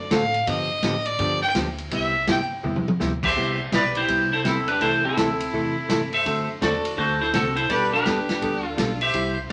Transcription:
0.00 fiddle D5
0.11 upright bass A2, hollow-body jazz guitar D3 A3 C4 F#4 A4, fiddle F5, kick, snare, hi-hat pedal, ride
0.34 ride
0.47 upright bass G2, hollow-body jazz guitar D3 F3 B3 D4 G4, fiddle D#5, kick, ride
0.83 upright bass A2, hollow-body jazz guitar D3 F3 B3 D4 G4, kick, snare, hi-hat pedal, ride
1.05 fiddle D5, ride
1.19 upright bass G2, hollow-body jazz guitar D3 F3 B3 D4 G4, kick, ride
1.42 fiddle G5
1.55 upright bass D2, hollow-body jazz guitar D3 F3 B3 D4 G4, kick, snare, hi-hat pedal, ride
1.78 ride
1.91 upright bass C2, hollow-body jazz guitar C3 G3 B3 E4 G4, fiddle E5, kick, ride
2.27 upright bass G2, hollow-body jazz guitar C3 G3 B3 E4 G4, fiddle G5, kick, snare, hi-hat pedal, ride
2.63 upright bass E2, hollow-body jazz guitar C3 G3 B3 E4 G4, mid tom
2.76 high tom
2.88 high tom
3.00 upright bass D2, hollow-body jazz guitar C3 G3 B3 E4 G4, snare, hi-hat pedal
3.23 electric slide guitar G4 E5, fiddle C5, kick, crash
3.36 upright bass C2, hollow-body jazz guitar C3 G3 B3 E4 G4, kick
3.72 upright bass B1, hollow-body jazz guitar C3 G3 B3 E4 G4, electric slide guitar G4 D5, fiddle B4, kick, snare, hi-hat pedal, ride
3.95 electric slide guitar E4 C5, fiddle G4, ride
4.08 upright bass C2, hollow-body jazz guitar C3 G3 B3 E4 G4, kick, ride
4.32 electric slide guitar E4 C5, fiddle A4
4.44 upright bass E2, hollow-body jazz guitar C3 G3 B3 E4 G4, electric slide guitar C4 A4, fiddle E4, kick, snare, hi-hat pedal, ride
4.68 electric slide guitar D4 B4, fiddle G4, ride
4.80 upright bass C2, hollow-body jazz guitar C3 E3 A3 E4 A4, electric slide guitar E4 C5, fiddle A4, kick, ride
5.04 electric slide guitar C4 A4, fiddle E4
5.16 upright bass D2, hollow-body jazz guitar C3 E3 A3 E4 A4, kick, snare, hi-hat pedal, ride
5.40 ride
5.53 upright bass E2, hollow-body jazz guitar C3 E3 A3 E4 A4, kick
5.89 upright bass G2, hollow-body jazz guitar C3 E3 A3 E4 A4, kick, snare, hi-hat pedal, ride
6.13 electric slide guitar A4 E5, fiddle C5, ride
6.25 upright bass F#2, hollow-body jazz guitar D3 A3 C4 F#4 A4, kick, ride
6.61 upright bass E2, hollow-body jazz guitar D3 A3 C4 F#4 A4, electric slide guitar F#4 D5, fiddle A4, kick, snare, hi-hat pedal, ride
6.85 ride
6.97 upright bass D2, hollow-body jazz guitar D3 A3 C4 F#4 A4, electric slide guitar F#4 C5, fiddle A4, kick
7.21 electric slide guitar E4 C5, fiddle A4
7.33 upright bass C2, hollow-body jazz guitar D3 A3 C4 F#4 A4, electric slide guitar C4 A4, fiddle F#4, kick, snare, hi-hat pedal, ride
7.56 electric slide guitar E4 C5, fiddle A4, ride
7.69 upright bass B1, hollow-body jazz guitar G3 B3 D4 A4, electric slide guitar G4 D5, fiddle B4, kick, ride
7.92 electric slide guitar D4 B4, fiddle G4
8.06 upright bass E2, hollow-body jazz guitar G3 B3 D4 A4, kick, snare, hi-hat pedal, ride
8.29 snare, ride
8.41 upright bass D2, hollow-body jazz guitar G3 B3 D4 A4, kick, ride
8.65 fiddle F4
8.70 electric slide guitar A4
8.77 upright bass B1, hollow-body jazz guitar G3 B3 D4 A4, kick, snare, hi-hat pedal, ride
9.01 electric slide guitar G4 E5, fiddle C5, ride
9.14 upright bass C2, hollow-body jazz guitar C3 G3 C4 E4 G4, kick, ride

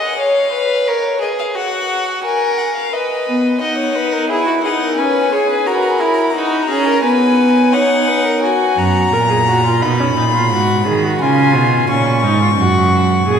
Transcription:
Already playing: violin D#5
0.02 violin F#5
0.19 violin C#5 F5
0.53 violin B4
0.88 violin A#4 C#5
1.22 violin G#4 D#5
1.39 violin F5
1.56 violin F#4 F#5
2.24 violin A#4 G#5
2.58 violin F#5
2.76 violin F5
2.93 violin B4 D#5
3.27 viola B3
3.61 viola D#4, violin D#5 F#5
3.78 violin C#5
3.95 violin B4
4.12 violin A#4
4.30 viola E4, violin G#4 E5
4.47 violin F#4
4.63 viola D#4, violin G#4 F#5
4.81 violin A#4
4.97 viola C#4, violin B4 G#5
5.32 viola G#4, violin C#5
5.50 violin B4
5.66 viola F#4, violin A#4 A#5
5.74 violin B5
5.82 violin A#5
5.90 violin B5
5.98 viola E4, violin A#5
6.06 violin B5
6.14 violin A#5
6.22 violin B5
6.30 violin A#5
6.35 viola D#4, violin F#4 B5
6.46 violin A#5
6.54 violin B5
6.62 violin A#5
6.70 viola C#4, violin G#4
6.87 violin A#4
7.04 viola B3, violin B4 G#5
7.73 viola D#4, violin C#5 F#5
8.08 violin B4
8.25 violin A#4
8.42 viola F#4, violin G#5
8.77 cello F#2, violin A#5
9.12 cello A#2, viola A#4
9.30 viola G#4
9.48 viola F#4
9.65 viola F4
9.81 cello B2, viola D#4, violin B5
9.99 viola C#4
10.17 cello A#2, viola D#4
10.35 viola F4
10.51 cello G#2, viola F#4
10.86 cello D#3, viola G#4
11.03 viola F#4
11.20 cello C#3, viola F4, violin G#5
11.55 cello B2
11.89 cello A#2, viola C#4, violin C#6
12.24 cello G#2, viola D#4
12.41 viola F4
12.58 cello F#2, viola F#4
13.28 cello A#2, viola G#4

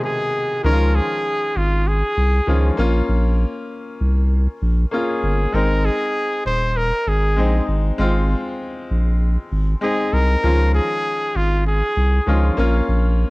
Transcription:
Already playing: grand piano B2 C3 D#3 G#3 A3 A#3 D#4
0.04 trumpet G#4
0.63 sub bass C#2, grand piano D#3 F3 G#3 C#4 D#4, trumpet A#4
0.72 grand piano F4
0.95 trumpet G#4
1.56 sub bass G#1, trumpet F4
1.87 trumpet G#4
2.17 sub bass C2
2.46 sub bass C#2, grand piano D#3 F3 G#3 C#4 F4
2.77 sub bass A#1, grand piano A#3 C#4 F4
3.09 sub bass A#1
4.01 sub bass C2
4.62 sub bass A#1
4.91 grand piano A#3 C#4 F4, trumpet G#4
5.23 sub bass G1
5.52 sub bass G#1, grand piano G#3 C4 D#4, trumpet A#4
5.85 trumpet G#4
6.45 sub bass D#1, trumpet C5
6.77 trumpet A#4
7.07 sub bass G#1, trumpet G#4
7.36 sub bass A#1, grand piano G#3 C4 D#4
7.68 sub bass G#1
7.98 sub bass G#1, grand piano G#3 C4 F4
8.91 sub bass A#1
9.52 sub bass G#1
9.81 grand piano G#3 C4 D#4, trumpet G#4
10.13 sub bass C2, trumpet A#4
10.43 sub bass C#2, grand piano D#3 F3 G#3 C#4 F4
10.75 trumpet G#4
11.35 sub bass G#1, trumpet F4
11.67 trumpet G#4
11.97 sub bass C2
12.26 sub bass C#2, grand piano D#3 F3 G#3 C#4 F4
12.57 sub bass A#1, grand piano A#3 C#4 F4
12.88 sub bass A#1

